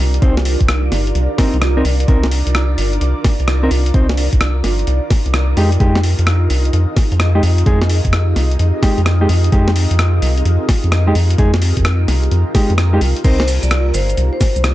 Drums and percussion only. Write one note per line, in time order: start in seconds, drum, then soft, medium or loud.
0.14 closed hi-hat medium
0.22 kick loud
0.22 closed hi-hat medium
0.37 snare medium
0.45 open hi-hat loud
0.61 kick medium
0.61 closed hi-hat medium
0.69 cross-stick loud
0.69 closed hi-hat medium
0.92 snare soft
0.92 open hi-hat medium
1.07 closed hi-hat soft
1.15 closed hi-hat medium
1.38 kick loud
1.38 snare medium
1.38 open hi-hat loud
1.54 closed hi-hat soft
1.62 cross-stick loud
1.62 closed hi-hat medium
1.85 open hi-hat medium
2.00 closed hi-hat medium
2.08 kick loud
2.08 closed hi-hat medium
2.23 snare medium
2.31 open hi-hat loud
2.47 closed hi-hat medium
2.55 cross-stick loud
2.55 closed hi-hat medium
2.78 open hi-hat medium
2.93 closed hi-hat soft
3.01 closed hi-hat medium
3.24 kick loud
3.24 snare medium
3.24 open hi-hat loud
3.40 closed hi-hat soft
3.48 cross-stick loud
3.48 closed hi-hat medium
3.71 open hi-hat medium
3.86 closed hi-hat medium
3.94 kick loud
3.94 closed hi-hat medium
4.09 snare medium
4.17 open hi-hat loud
4.33 kick medium
4.33 closed hi-hat medium
4.41 cross-stick loud
4.41 closed hi-hat medium
4.64 snare soft
4.64 open hi-hat medium
4.79 closed hi-hat soft
4.87 closed hi-hat medium
5.10 kick loud
5.10 snare medium
5.10 open hi-hat loud
5.26 closed hi-hat soft
5.34 cross-stick loud
5.34 closed hi-hat medium
5.57 open hi-hat medium
5.72 closed hi-hat medium
5.80 kick loud
5.80 closed hi-hat medium
5.95 snare medium
6.03 open hi-hat loud
6.19 closed hi-hat medium
6.27 cross-stick loud
6.27 closed hi-hat medium
6.50 open hi-hat medium
6.65 closed hi-hat soft
6.73 closed hi-hat medium
6.96 kick loud
6.96 snare medium
6.96 open hi-hat medium
7.12 closed hi-hat soft
7.20 cross-stick loud
7.20 closed hi-hat medium
7.43 open hi-hat medium
7.58 closed hi-hat medium
7.66 kick loud
7.66 closed hi-hat medium
7.82 snare medium
7.89 open hi-hat loud
8.05 kick medium
8.05 closed hi-hat medium
8.13 cross-stick loud
8.13 closed hi-hat medium
8.36 snare soft
8.36 open hi-hat medium
8.51 closed hi-hat soft
8.59 closed hi-hat medium
8.83 kick loud
8.83 snare medium
8.83 open hi-hat loud
8.98 closed hi-hat soft
9.06 cross-stick loud
9.06 closed hi-hat medium
9.29 open hi-hat medium
9.44 closed hi-hat medium
9.52 kick loud
9.52 closed hi-hat medium
9.68 snare medium
9.76 open hi-hat loud
9.91 closed hi-hat medium
9.99 cross-stick loud
9.99 closed hi-hat medium
10.22 open hi-hat medium
10.37 closed hi-hat soft
10.45 closed hi-hat medium
10.69 kick medium
10.69 snare medium
10.69 open hi-hat loud
10.84 closed hi-hat soft
10.92 cross-stick loud
10.92 closed hi-hat medium
11.15 open hi-hat medium
11.30 closed hi-hat medium
11.38 kick loud
11.38 closed hi-hat medium
11.54 snare medium
11.62 open hi-hat loud
11.77 kick medium
11.77 closed hi-hat medium
11.85 cross-stick loud
11.85 closed hi-hat medium
12.08 snare soft
12.08 open hi-hat loud
12.23 closed hi-hat soft
12.31 closed hi-hat medium
12.55 kick loud
12.55 snare medium
12.55 open hi-hat loud
12.70 closed hi-hat soft
12.78 cross-stick loud
12.78 closed hi-hat medium
13.01 open hi-hat medium
13.16 closed hi-hat medium
13.24 kick loud
13.24 closed hi-hat medium
13.24 crash medium
13.24 shaker soft
13.40 snare medium
13.48 open hi-hat loud
13.48 shaker medium
13.63 closed hi-hat medium
13.63 shaker soft
13.71 cross-stick loud
13.71 closed hi-hat medium
13.71 shaker soft
13.94 open hi-hat medium
13.94 shaker medium
14.10 closed hi-hat soft
14.10 shaker soft
14.17 closed hi-hat medium
14.17 shaker soft
14.41 kick loud
14.41 snare medium
14.41 open hi-hat loud
14.41 shaker medium
14.56 closed hi-hat soft
14.56 shaker soft
14.64 cross-stick loud
14.64 closed hi-hat medium
14.64 shaker soft